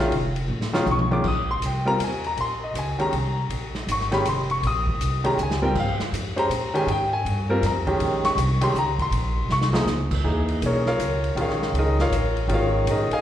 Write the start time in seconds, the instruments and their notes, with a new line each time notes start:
0.00 grand piano D#3 G#3 C#4 F4
0.11 upright bass F1, ride
0.36 ride
0.48 upright bass A1, high tom
0.61 snare
0.73 grand piano D#3 G#3 C#4 F4, snare
0.86 upright bass B1, hi-hat pedal, mid tom
0.91 grand piano C#6
0.99 mid tom
1.11 grand piano D#3 G#3 C#4 F4 D6, mid tom
1.24 upright bass A#1, grand piano D#6, kick, crash
1.51 grand piano C6
1.61 upright bass C2, hi-hat pedal, ride
1.66 grand piano G5
1.85 grand piano G3 C4 F4 A#4 A#5
1.99 upright bass D#2, hi-hat pedal, ride
2.04 grand piano G#5
2.24 grand piano A#5, ride
2.36 upright bass A#1, ride
2.41 grand piano C6
2.64 grand piano D#5
2.74 upright bass C#2, hi-hat pedal, ride
2.79 grand piano G#5
2.99 grand piano D#3 G#3 C#4 G4 A#5, muted upright bass stroke, ride
3.12 upright bass C2, ride
3.49 upright bass A#1, ride
3.75 snare
3.87 upright bass G#1, hi-hat pedal, ride
3.92 grand piano C#6
4.00 snare
4.11 grand piano D#3 G#3 C#4 G4 B5, snare, ride
4.25 upright bass F1, grand piano C6, hi-hat pedal, ride
4.50 grand piano C#6, ride
4.62 upright bass A#1, ride
4.67 grand piano D#6
4.87 kick
4.99 upright bass C2, hi-hat pedal, ride
5.24 grand piano D#3 G#3 C#4 G4 A#5, ride
5.37 upright bass C#2, hi-hat pedal
5.43 grand piano G#5
5.51 snare
5.62 grand piano G3 C4 F4 A#4 G5, floor tom
5.75 upright bass D#2, kick, crash
5.79 grand piano F5
5.99 muted upright bass stroke, snare
6.12 upright bass F2, hi-hat pedal, ride
6.36 grand piano G#3 C#4 G4 C5 A#5, ride
6.49 upright bass A#2, hi-hat pedal, ride
6.74 grand piano D#3 G#3 C#4 G4 G#5, ride
6.87 upright bass G#2, ride
6.91 grand piano G5
7.09 grand piano G5
7.13 grand piano G#5
7.25 upright bass G2, ride
7.49 grand piano G3 C4 F4 A#4
7.62 upright bass F2, snare, hi-hat pedal, ride
7.66 grand piano A#5
7.87 grand piano D#3 G#3 C#4 G4, kick, ride
7.99 upright bass A#1, ride
8.24 grand piano C#6, snare, ride
8.37 upright bass C2, hi-hat pedal, ride
8.61 grand piano D#3 G#3 C#4 G4 C6, ride
8.74 upright bass C#2, hi-hat pedal
8.79 grand piano A#5
8.99 grand piano C6, kick, ride
9.11 upright bass A#1, ride
9.48 upright bass C2, grand piano C#6, snare
9.61 snare
9.73 grand piano F3 A#3 D#4 G#4, snare
9.85 upright bass C#2, snare, hi-hat pedal
10.11 kick, crash
10.24 upright bass D#2, grand piano E3 A#3 D#4 G#4
10.48 ride
10.61 upright bass B1, hi-hat pedal, ride
10.66 grand piano C#4 G#4 A#4 C#5
10.86 grand piano F4 A#4 C#5 F5, snare
10.99 upright bass C#2, hi-hat pedal, ride
11.24 ride
11.35 upright bass A#1, grand piano D#3 G#3 C#4 F4, ride
11.41 grand piano F4 A#4 C#5 F5
11.50 snare
11.62 snare
11.73 upright bass C#2, ride
11.79 grand piano D#4 G#4 A#4 D#5
11.99 grand piano F4 A#4 C#5 F5, snare
12.10 upright bass A1, hi-hat pedal, ride
12.37 ride
12.48 upright bass G#1, grand piano D#3 G#3 C#4 F4, ride
12.54 grand piano F4 A#4 C#5 F5
12.85 upright bass A#1, hi-hat pedal, ride
12.91 grand piano D#4 G#4 A#4 D#5
13.09 muted upright bass stroke, ride
13.13 grand piano G#4 D#5 F5 G#5